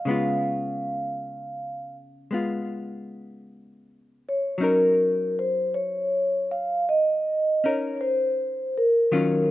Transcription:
Already playing: F5
0.05 C#3 G#3 B3
0.10 F4
2.31 G#3 B3 F4
4.29 C#5
4.58 F#3 C#4 D#4
4.62 A#4
5.39 C5
5.74 C#5
6.51 F5
6.89 D#5
7.64 C#4 D#4 A#4 C#5
8.01 C5
8.78 A#4
9.12 D#3 F#3 C#4 F4

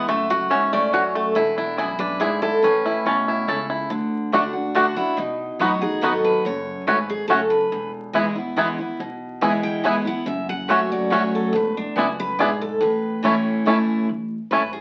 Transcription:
0.07 F#1 F#2 A3 E5
0.30 F#4 F#5
0.50 G#2 A3 C#4 F#4 C#5 E5 F#5
0.73 A3 D5
0.93 F#2 A3 F#4 C#5 F#5
1.15 A3 A4
1.35 E1 E2 E4 B4
1.58 D4 E4
1.77 F#2 B3 E4 F#4 D5 G#5
1.99 D4 B4
2.20 G#2 B3 E4 G#4 D5 G#5
2.42 E4 A4
2.62 A1 A2 C#4 B4
2.86 E4
3.05 B1 B2 A3 C#4 E4 C#5 A5
3.28 E4
3.48 C#2 C#3 A3 E4 A4 C#5 A5
3.70 E4
3.90 D2 D3
4.32 D3 A3 D4 F#4 D5 F#5
4.53 D4 F#4
4.75 D3 A3 D4 F#4 D5 F#5
4.96 D4 E4 F#4
5.17 B1 B2 D#4
5.59 A1 F#3 B3 D#4 F#4 D#5 B5
5.81 D#4 F#4 G#4
6.01 G#1 F#3 B3 D#4 F#4 A4 D#5 B5
6.24 B4
6.45 F#1 F#2 C#5
6.87 G#1 G#2 A3 C#4 F#4 B4 C#5 F#5
7.10 G#4
7.28 F#1 F#2 A3 C#4 F#4 A4 C#5 F#5
7.50 B4
7.72 E1 E2
8.13 E3 G#3 B3 E4 B4 G#5
8.35 B3 E4
8.56 E3 G#3 B3 E4 B4 G#5
8.78 B3 E4
8.99 B1 B2
9.41 E3 G#3 B3 E4 B4 G#5
9.63 G5
9.84 E3 G#3 B3 E4 B4 G#5
10.05 B3 E4 F#5
10.26 F#1 F#2 E5
10.49 F#5
10.68 F#3 A3 C#4 F#4 C#5 E5 F#5
10.92 D5
11.10 F#3 A3 C#4 F#4 C#5 F#5
11.35 A4
11.53 E1 E2 B4
11.77 D4
11.96 C#2 F#2 B3 D4 E4 F#4 D5 G#5
12.20 B4
12.39 B1 G#2 B3 D4 E4 G#4 D5 G#5
12.62 A4
12.81 A1 A2 B4
13.23 E3 A3 C#4 E4 C#5 A5
13.65 E3 A3 C#4 E4 C#5 A5
14.09 A1
14.51 G#1 A3 C#4 E4 B4 C#5 A5
14.73 G#4

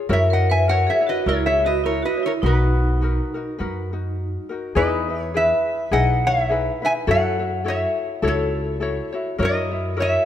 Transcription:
Already playing: C#5
0.09 F#2 E4 F#4 A#4 C#5 E5
0.13 C#5
0.30 A#4 D#5 F#5
0.50 B4 E5 G#5
0.68 E4 F#4 A#4 C#5 F#5
0.87 G#4 C#5 E5
1.01 E4 F#4 C#5
1.07 F#4 B4 D#5
1.26 C#2 E4 F#4 A#4 C#5
1.46 G#4 C#5 E5
1.58 E4 F#4 C#5
1.65 F#4 B4 D#5
1.84 E4 A#4 C#5
2.02 F#4 B4 D#5
2.17 E4 F#4 C#5
2.23 E4 C#5
2.27 A#4
2.42 B1 D#4 F#4 B4
2.46 F#4 B4
3.01 D#4 F#4 A#4 B4
3.34 D#4 F#4 A#4
3.58 F#2 D#4 F#4 A#4 B4
3.93 D#4 F#4
4.49 D#4 F#4 A#4
4.75 E2 D#4 E4 G#4 B4 D#5
5.09 D#4 E4 B4
5.22 C#5
5.34 E4 G#4 B4 E5
5.91 B1 D#4 E4 G#4 B4 D#5 F#5
6.27 C#5 E5
6.49 D#4 E4 G#4 B4
6.82 D#4 E4 B4 E5 G#5
7.07 F#2 E4 F#4 A4 C#5 F#5
7.39 E4 F#4 C#5
7.64 E4 F#4 A4 C#5 E5
7.70 C#5
8.22 C#2 E4 F#4 A4 C#5
8.28 A4 C#5
8.80 E4 F#4 A4 C#5
9.12 E4 F#4 C#5
9.38 F#2 E4 F#4 A#4 C#5
9.43 A#4 D#5
9.71 E4 F#4 C#5
9.97 E4 F#4 A#4 C#5
10.02 E5

